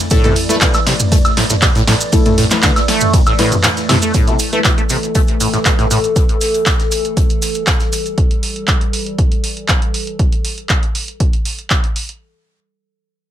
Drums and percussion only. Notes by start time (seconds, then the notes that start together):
0.10 kick, closed hi-hat, ride, maracas
0.24 closed hi-hat, mid tom, maracas
0.36 closed hi-hat, open hi-hat, ride
0.49 closed hi-hat, maracas
0.61 kick, snare, clap, closed hi-hat, ride, maracas
0.74 closed hi-hat, high woodblock, maracas
0.87 snare, closed hi-hat, open hi-hat, ride
1.00 closed hi-hat, mid tom, maracas
1.12 kick, closed hi-hat, ride, maracas
1.25 closed hi-hat, high woodblock, maracas
1.37 snare, closed hi-hat, open hi-hat, ride
1.50 snare, closed hi-hat, mid tom, maracas
1.62 kick, snare, clap, closed hi-hat, ride, maracas
1.75 snare, closed hi-hat, maracas
1.87 snare, closed hi-hat, open hi-hat, ride
2.01 closed hi-hat, maracas
2.12 kick, closed hi-hat, ride, maracas
2.25 closed hi-hat, mid tom, maracas
2.38 snare, closed hi-hat, open hi-hat, ride
2.50 snare, clap, closed hi-hat, maracas
2.62 kick, snare, clap, closed hi-hat, ride, maracas
2.76 snare, closed hi-hat, high woodblock, maracas
2.88 snare, closed hi-hat, open hi-hat, ride
3.01 closed hi-hat, mid tom, maracas
3.13 kick, closed hi-hat, ride, maracas
3.26 closed hi-hat, high woodblock, maracas
3.39 snare, closed hi-hat, open hi-hat, ride
3.52 closed hi-hat, mid tom, maracas
3.63 snare, clap, closed hi-hat, ride, maracas
3.77 snare, closed hi-hat, maracas
3.89 snare, closed hi-hat, mid tom, open hi-hat, ride, high woodblock
4.02 closed hi-hat, maracas
4.14 kick, closed hi-hat, maracas
4.28 closed hi-hat, maracas
4.39 closed hi-hat, open hi-hat, maracas
4.53 closed hi-hat, maracas
4.64 kick, snare, clap, closed hi-hat, maracas
4.78 closed hi-hat, maracas
4.89 closed hi-hat, open hi-hat, maracas
5.03 closed hi-hat, maracas
5.15 kick, closed hi-hat, maracas
5.27 closed hi-hat, maracas
5.40 closed hi-hat, open hi-hat, maracas
5.53 snare, closed hi-hat, maracas
5.65 kick, snare, clap, closed hi-hat, maracas
5.79 snare, closed hi-hat, maracas
5.91 closed hi-hat, open hi-hat, maracas
6.04 closed hi-hat, maracas
6.16 kick, closed hi-hat, maracas
6.29 closed hi-hat, maracas
6.41 snare, closed hi-hat, open hi-hat, maracas
6.54 closed hi-hat, maracas
6.66 kick, snare, clap, closed hi-hat, maracas
6.79 snare, closed hi-hat, maracas
6.92 closed hi-hat, open hi-hat, maracas
7.05 closed hi-hat, maracas
7.17 kick, closed hi-hat, maracas
7.30 closed hi-hat, maracas
7.42 snare, closed hi-hat, open hi-hat, maracas
7.55 closed hi-hat, maracas
7.67 kick, snare, clap, closed hi-hat, maracas
7.80 snare, closed hi-hat, maracas
7.93 closed hi-hat, open hi-hat, maracas
8.06 closed hi-hat, maracas
8.18 kick, closed hi-hat
8.31 closed hi-hat
8.43 open hi-hat
8.56 closed hi-hat
8.68 kick, clap, closed hi-hat
8.81 closed hi-hat
8.93 open hi-hat
9.06 closed hi-hat
9.19 kick, closed hi-hat
9.32 closed hi-hat
9.44 open hi-hat
9.57 closed hi-hat
9.68 kick, clap, closed hi-hat
9.82 closed hi-hat
9.94 open hi-hat
10.07 closed hi-hat
10.19 kick, closed hi-hat
10.32 closed hi-hat
10.45 open hi-hat
10.58 closed hi-hat
10.69 kick, clap, closed hi-hat
10.83 closed hi-hat
10.95 open hi-hat
11.08 closed hi-hat
11.20 kick, closed hi-hat
11.33 closed hi-hat
11.45 open hi-hat
11.59 closed hi-hat
11.70 kick, clap, closed hi-hat
11.84 closed hi-hat
11.96 open hi-hat
12.09 closed hi-hat